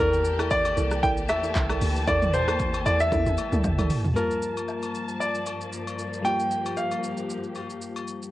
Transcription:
Already playing: string section G4
0.00 log drum bass E2, string section E3 A#3 A5, synth pluck E4 A4 A#4 D5, grand piano A#4
0.13 shaker
0.25 shaker
0.39 synth pluck E4 A4 A#4 D5, cross-stick, high agogo, shaker
0.51 grand piano D5, kick, shaker
0.65 high agogo, shaker
0.77 log drum bass C2, synth pluck E4 A4 A#4 D5, shaker
0.91 cross-stick, shaker
1.03 synth pluck E4 A4 A#4 D5, grand piano G5, kick, shaker
1.17 shaker
1.29 log drum bass E2, grand piano E5, cross-stick, high agogo, shaker
1.43 synth pluck E4 A4 A#4 D5, shaker
1.55 log drum bass C2, kick, clap, low woodblock, shaker
1.69 synth pluck E4 A4 A#4 D5, cross-stick, high agogo, shaker
1.81 log drum bass D2, open hi-hat, shaker
1.96 shaker
2.07 log drum bass E2, synth pluck E4 A4 A#4 D5, grand piano D5, kick, high agogo, shaker
2.22 mid tom, shaker
2.34 grand piano C5, shaker
2.48 synth pluck E4 A4 A#4 D5, cross-stick, high agogo, shaker
2.59 kick, shaker
2.74 high agogo, shaker
2.86 log drum bass E2, synth pluck E4 A4 A#4 D5, grand piano D5, shaker
3.00 grand piano E5, shaker
3.12 log drum bass E2, synth pluck E4 A4 A#4 D5, kick, high tom, shaker
3.26 log drum bass E2, high tom, shaker
3.38 high agogo, shaker
3.52 log drum bass D2, synth pluck E4 A4 A#4 D5, mid tom, shaker
3.64 log drum bass E2, kick, mid tom, low woodblock, shaker
3.78 log drum bass D2, synth pluck E4 A4 A#4 D5, mid tom, high agogo, shaker
3.90 floor tom, open hi-hat, shaker
4.05 log drum bass E2, floor tom, shaker
4.14 string section G2 F3 A#3 A5, fm electric piano G3 A#3 F4, grand piano A#4, high agogo, shaker
4.19 fm electric piano A5
4.31 shaker
4.42 shaker
4.57 high agogo, shaker
4.68 low woodblock, shaker
4.83 high agogo, shaker
4.95 shaker
5.09 shaker
5.20 grand piano D5, shaker
5.35 shaker
5.46 high agogo, shaker
5.61 shaker
5.73 shaker
5.87 high agogo, shaker
5.99 shaker
6.13 shaker
6.23 fm electric piano G3 A#3 F4, string section G4, grand piano G5, high agogo, shaker
6.27 fm electric piano G4
6.40 shaker
6.51 shaker
6.66 high agogo, shaker
6.77 grand piano F5, low woodblock, shaker
6.91 high agogo, shaker
7.04 shaker
7.17 shaker
7.30 shaker
7.44 shaker
7.55 high agogo, shaker
7.70 shaker
7.82 shaker
7.96 high agogo, shaker
8.08 shaker
8.22 shaker

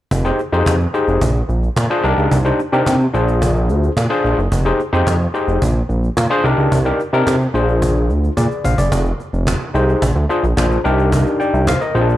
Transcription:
0.11 analog synth bass F1, cajon bass
0.24 tine electric piano D#4 G4 G#4 C5, cajon slap
0.39 cajon slap
0.53 analog synth bass F2, tine electric piano D#4 G4 G#4 C5, cajon slap
0.66 analog synth bass F2, cajon bass, cajon slap
0.80 cajon slap
0.94 tine electric piano D#4 G4 G#4 C5, cajon slap
1.08 analog synth bass F1, cajon slap
1.21 analog synth bass A#1, cajon bass
1.35 cajon slap
1.49 analog synth bass A#1, cajon slap
1.63 cajon slap
1.76 analog synth bass A#2, cajon bass, cajon slap
1.90 tine electric piano D4 F4 G#4 C5, cajon slap
2.03 analog synth bass C2, tine electric piano D4 D#4 G4 A#4, cajon slap
2.18 analog synth bass C#2, cajon slap
2.31 analog synth bass C2, cajon bass
2.45 tine electric piano D4 D#4 G4 C5, cajon slap
2.59 cajon slap
2.72 analog synth bass C3, tine electric piano D4 D#4 G4 A#4, cajon slap
2.86 analog synth bass C3, cajon bass, cajon slap
3.00 cajon slap
3.13 analog synth bass A#1, tine electric piano D4 F4 G#4 C5, cajon slap
3.28 cajon slap
3.42 cajon bass
3.56 cajon slap
3.69 analog synth bass D2, cajon slap
3.83 cajon slap
3.97 analog synth bass A#2, cajon bass, cajon slap
4.10 tine electric piano D4 F4 G#4 C5, cajon slap
4.24 analog synth bass A#1, cajon slap
4.38 analog synth bass F#1, cajon slap
4.52 analog synth bass F1, cajon bass
4.65 tine electric piano D#4 G4 G#4 C5, cajon slap
4.80 cajon slap
4.93 analog synth bass F2, tine electric piano D#4 G4 G#4 C5, cajon slap
5.07 analog synth bass F2, cajon bass, cajon slap
5.20 cajon slap
5.34 tine electric piano D#4 G4 G#4 C5, cajon slap
5.48 analog synth bass F1, cajon slap
5.62 analog synth bass A#1, cajon bass
5.76 cajon slap
5.89 analog synth bass A#1, cajon slap
6.04 cajon slap
6.17 analog synth bass A#2, cajon bass, cajon slap
6.30 tine electric piano D4 F4 G#4 C5, cajon slap
6.44 analog synth bass C2, tine electric piano D4 D#4 G4 A#4, cajon slap
6.58 analog synth bass C#2, cajon slap
6.72 analog synth bass C2, cajon bass
6.85 tine electric piano D4 D#4 G4 A#4, cajon slap
7.00 cajon slap
7.13 analog synth bass C3, tine electric piano D4 D#4 G4 A#4, cajon slap
7.27 analog synth bass C3, cajon bass, cajon slap
7.40 cajon slap
7.54 analog synth bass A#1, tine electric piano D4 F4 G#4 C5, cajon slap
7.68 cajon slap
7.82 cajon bass
7.96 cajon slap
8.09 analog synth bass D2, cajon slap
8.24 cajon slap
8.37 analog synth bass A#2, tine electric piano G#4 D5, cajon bass, cajon slap
8.51 cajon slap
8.64 analog synth bass A#1, tine electric piano C5 F5, cajon bass
8.78 analog synth bass F#1, tine electric piano G#4 D5, cajon bass
8.92 analog synth bass F1, cajon bass
9.06 cajon slap
9.20 cajon slap
9.33 analog synth bass F1, cajon slap
9.47 cajon bass, cajon slap
9.60 cajon slap
9.74 analog synth bass C2, tine electric piano D#4 G4 G#4 C5, cajon slap
9.88 cajon slap
10.02 analog synth bass A#1, cajon bass
10.16 analog synth bass D2, cajon slap
10.29 tine electric piano D4 F4 G#4 C5, cajon slap
10.43 analog synth bass A#1, cajon slap
10.57 analog synth bass A#1, tine electric piano D4 F4 G#4 C5, cajon bass, cajon slap
10.72 cajon slap
10.84 analog synth bass C2, tine electric piano D4 D#4 G4 A#4, cajon slap
10.99 cajon slap
11.12 cajon bass
11.26 cajon slap
11.40 tine electric piano D5 G5, cajon slap
11.54 analog synth bass C2, cajon slap
11.67 tine electric piano C5 F5, cajon bass, cajon slap
11.81 tine electric piano A#4 D#5, cajon slap
11.95 analog synth bass A#1, tine electric piano C4 F4 G#4 C5, cajon slap
12.01 tine electric piano D4
12.09 cajon slap

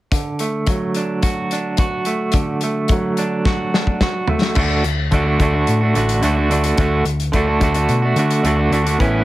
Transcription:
0.12 clean electric guitar D3, kick, closed hi-hat
0.39 clean electric guitar A3, closed hi-hat
0.66 clean electric guitar F#3, kick, closed hi-hat
0.95 clean electric guitar D4, closed hi-hat
1.22 clean electric guitar F#4, kick, closed hi-hat
1.51 clean electric guitar D4, closed hi-hat
1.77 clean electric guitar F#4, kick, closed hi-hat
2.05 clean electric guitar A3, closed hi-hat
2.32 clean electric guitar D3, kick, closed hi-hat
2.61 clean electric guitar A3, closed hi-hat
2.88 clean electric guitar F#3, kick, closed hi-hat
3.17 clean electric guitar D4, closed hi-hat
3.45 clean electric guitar F#4, kick, snare
3.74 clean electric guitar D4, snare
3.87 kick
4.01 clean electric guitar F#4, kick, snare
4.28 clean electric guitar A3, floor tom
4.42 snare
4.55 picked electric bass D2, clean electric guitar D3 A3 D4 F#4, kick, crash
4.84 picked electric bass D2, closed hi-hat
5.11 picked electric bass D2, clean electric guitar D3 A3 D4, kick, closed hi-hat
5.15 clean electric guitar F#4
5.25 clean electric guitar A3 D4 F#4
5.39 picked electric bass D2, clean electric guitar D3 A3 D4 F#4, kick, closed hi-hat
5.53 clean electric guitar A3 D4 F#4
5.67 picked electric bass A2, closed hi-hat
5.81 clean electric guitar D4 F#4
5.85 clean electric guitar A3
5.94 picked electric bass A1, clean electric guitar D3 A3 D4 F#4, closed hi-hat
6.09 closed hi-hat
6.21 picked electric bass D2, clean electric guitar D3 A3 D4 F#4, closed hi-hat
6.36 clean electric guitar A3 D4 F#4
6.50 clean electric guitar D3 A3 D4 F#4, closed hi-hat
6.64 clean electric guitar A3 D4 F#4, closed hi-hat
6.77 picked electric bass D2, clean electric guitar D3 A3 D4 F#4, kick, closed hi-hat
7.05 picked electric bass D2, closed hi-hat
7.20 closed hi-hat
7.32 picked electric bass D2, clean electric guitar D3 A3 D4, kick, closed hi-hat
7.36 clean electric guitar F#4
7.47 clean electric guitar A3 D4 F#4
7.60 picked electric bass D2, clean electric guitar D3 A3 D4 F#4, kick, closed hi-hat
7.74 clean electric guitar A3 D4 F#4, closed hi-hat
7.89 picked electric bass B2, closed hi-hat
8.02 clean electric guitar A3 D4 F#4
8.16 picked electric bass D3, clean electric guitar D3 A3 D4 F#4, closed hi-hat
8.31 closed hi-hat
8.43 picked electric bass D2, clean electric guitar D3 A3 D4 F#4, closed hi-hat
8.56 clean electric guitar D4 F#4
8.60 clean electric guitar A3
8.70 picked electric bass D2, clean electric guitar D3 A3 D4 F#4, closed hi-hat
8.84 clean electric guitar A3 D4 F#4, closed hi-hat
8.99 picked electric bass A1, clean electric guitar A2 E3 B3 C#4 E4, kick, closed hi-hat

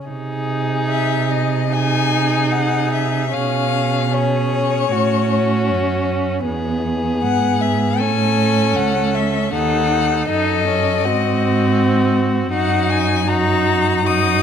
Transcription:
0.08 cello C3, viola D#4, violin G#4
0.89 violin E5
1.31 violin D#5
1.73 viola D#4, violin G#4 G#5
2.52 violin F#5
2.93 violin E5
3.32 cello B2, viola C#4, violin G#4 F5
4.12 viola C#4, violin G#4 C#5
4.90 cello A2, viola C#4, violin F#4
5.70 cello F#2
6.46 cello E2, viola B3, violin G#4
7.23 cello G#2, violin F#5
7.61 violin E5
7.98 cello A2, viola C#4, violin A4 G#5
8.76 cello C#2, violin F#5
9.15 violin E5
9.53 cello D#2, viola D#4, violin A4 F#5
10.29 cello F#2, viola D#4, violin A4 D#5
10.67 viola C#4
11.05 cello G#2, viola C4, violin F#4
12.53 cello F#2, viola D#4, violin F#4 F#5
12.90 violin G#5
13.27 viola D#4, violin F#4 A#5
14.07 viola D#4, violin F#4 D#6

